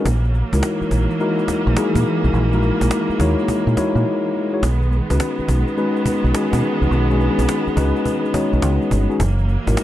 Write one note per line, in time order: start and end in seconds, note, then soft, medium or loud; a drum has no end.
0.06 0.42 A#1 loud
0.06 4.59 E3 medium
0.06 2.32 F#3 medium
0.06 4.59 A#3 medium
0.06 cajon bass loud
0.24 cajon slap soft
0.34 cajon slap soft
0.53 0.60 C#2 loud
0.53 0.94 G#3 medium
0.53 0.94 D#4 medium
0.53 0.94 E4 medium
0.53 0.95 F#4 medium
0.53 0.95 A#4 medium
0.53 cajon bass loud
0.63 cajon slap loud
0.81 muted fingered electric bass stroke soft
0.81 cajon slap soft
0.91 1.06 A#1 loud
0.91 cajon bass medium
1.10 cajon slap soft
1.20 1.58 G#3 medium
1.20 1.58 D#4 medium
1.20 1.59 E4 medium
1.20 1.59 F#4 medium
1.20 1.59 A#4 loud
1.20 cajon slap soft
1.39 cajon slap soft
1.48 muted fingered electric bass stroke soft
1.48 cajon bass loud
1.48 cajon slap medium
1.67 1.74 A#1 loud
1.67 cajon slap soft
1.76 2.25 G#3 medium
1.76 2.26 D#4 medium
1.76 2.26 E4 medium
1.76 2.26 F#4 medium
1.76 2.26 G#4 loud
1.76 cajon slap loud
1.95 2.03 A#2 loud
1.95 cajon bass loud
2.24 2.32 B1 medium
2.24 cajon slap soft
2.34 2.70 A#1 loud
2.34 9.16 G#3 medium
2.34 cajon slap soft
2.52 2.94 G#3 medium
2.52 2.94 D#4 medium
2.52 2.94 E4 medium
2.52 2.95 F#4 medium
2.52 2.95 A#4 loud
2.52 cajon slap soft
2.62 cajon slap soft
2.81 2.89 A#1 medium
2.81 cajon bass loud
2.91 cajon slap loud
3.09 muted fingered electric bass stroke soft
3.09 cajon slap soft
3.20 3.34 D#2 medium
3.20 3.58 G#3 medium
3.20 3.58 D#4 medium
3.20 3.58 E4 medium
3.20 3.59 F#4 medium
3.20 3.59 C#5 medium
3.20 cajon bass loud
3.38 cajon slap soft
3.48 cajon bass medium
3.67 3.74 A#2 loud
3.67 cajon slap soft
3.77 4.25 G#3 medium
3.77 4.26 D#4 medium
3.77 4.26 E4 medium
3.77 4.26 F#4 medium
3.77 4.26 C#5 loud
3.77 cajon bass loud
3.77 cajon slap medium
3.95 4.03 A#2 loud
3.95 cajon slap soft
4.53 4.63 G#3 medium
4.53 4.63 D#4 medium
4.53 4.63 E4 medium
4.53 4.63 F#4 medium
4.53 4.63 C#5 medium
4.63 4.99 B1 loud
4.63 9.16 D#3 medium
4.63 9.16 B3 medium
4.63 cajon bass loud
4.82 cajon slap soft
4.92 cajon slap soft
5.10 5.18 C#2 medium
5.10 5.51 G#3 medium
5.10 5.51 C#4 medium
5.10 5.51 D#4 medium
5.10 5.52 F#4 medium
5.10 5.52 B4 medium
5.10 cajon bass loud
5.20 cajon slap loud
5.39 muted fingered electric bass stroke soft
5.39 cajon slap soft
5.48 5.63 B1 medium
5.48 cajon bass loud
5.67 cajon slap soft
5.77 6.15 G#3 loud
5.77 6.16 C#4 medium
5.77 6.16 D#4 medium
5.77 6.16 F#4 medium
5.77 6.16 B4 loud
5.77 cajon slap soft
5.96 cajon slap soft
6.06 muted fingered electric bass stroke soft
6.06 cajon bass loud
6.06 cajon slap medium
6.24 6.32 B1 medium
6.24 cajon slap soft
6.34 6.83 G#3 medium
6.34 6.83 C#4 medium
6.34 6.83 D#4 medium
6.34 6.83 F#4 medium
6.34 6.84 G#4 loud
6.34 cajon slap loud
6.53 6.61 B2 loud
6.53 cajon bass loud
6.82 6.89 C2 medium
6.82 cajon slap soft
6.91 7.28 B1 loud
6.91 cajon slap soft
7.10 7.51 G#3 medium
7.10 7.51 C#4 medium
7.10 7.15 D4 medium
7.10 7.52 F#4 medium
7.10 7.52 G#4 loud
7.10 cajon slap soft
7.17 7.55 D#4 medium
7.17 cajon slap soft
7.39 7.46 B1 medium
7.39 cajon bass medium
7.49 cajon slap loud
7.67 muted fingered electric bass stroke medium
7.67 cajon slap soft
7.77 7.91 C#2 loud
7.77 8.15 G#3 medium
7.77 8.15 C#4 medium
7.77 8.15 D#4 medium
7.77 8.16 F#4 medium
7.77 8.16 B4 loud
7.77 cajon bass loud
7.96 cajon slap soft
8.05 cajon bass medium
8.25 cajon slap soft
8.34 8.83 G#3 medium
8.34 8.83 C#4 medium
8.34 8.83 D#4 medium
8.34 8.83 F#4 medium
8.34 8.83 C#5 loud
8.34 muted fingered electric bass stroke medium
8.34 cajon bass loud
8.34 cajon slap medium
8.53 8.61 B1 loud
8.53 cajon slap soft
8.62 8.77 C#2 loud
8.62 cajon slap loud
8.81 cajon slap soft
8.91 9.06 G1 loud
8.91 cajon bass loud
9.09 9.19 G#3 medium
9.09 9.19 C#4 medium
9.09 9.20 D#4 medium
9.09 9.20 F#4 medium
9.09 9.20 G#4 medium
9.09 cajon slap soft
9.19 9.56 F#1 loud
9.19 9.84 E3 medium
9.19 9.84 F#3 medium
9.19 9.84 A#3 medium
9.19 cajon bass loud
9.38 cajon slap soft
9.48 cajon slap soft
9.67 9.75 G#1 loud
9.67 9.84 G#3 medium
9.67 9.84 D#4 medium
9.67 9.84 E4 medium
9.67 9.84 F#4 medium
9.67 9.84 A#4 medium
9.67 cajon bass medium
9.77 cajon slap loud